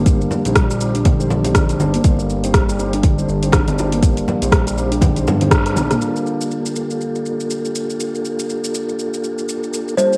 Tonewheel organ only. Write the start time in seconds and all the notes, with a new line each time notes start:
0.06 G3 C4 D#4 G4 C5
0.45 G3 C4 D#4 G4 C5
0.80 G3 C4 D#4 G4 C5
1.20 G3 C4 D#4 G4 C5
1.44 G3 C4 D#4 G4 C5
1.69 G3 C4 D#4 G4 C5
2.04 G3 C4 D#4 G4 C5
2.44 G3 C4 D#4 G4 C5
2.79 G3 C4 D#4 G4 C5
3.18 G3 C4 D#4 G4 C5
3.43 G3 C4 D#4 G4 C5
3.67 G3 C4 D#4 G4 C5
4.03 G3 C4 D#4 G4 C5
4.42 G3 C4 D#4 G4 C5
4.77 G3 C4 D#4 G4 C5
5.16 G3 C4 D#4 G4 C5
5.41 G3 C4 D#4 G4 C5
5.66 G3 C4 D#4 G4 C5
6.01 A#3 D4 F4 G4 A4
9.98 A#3 D4 F4 G4 A5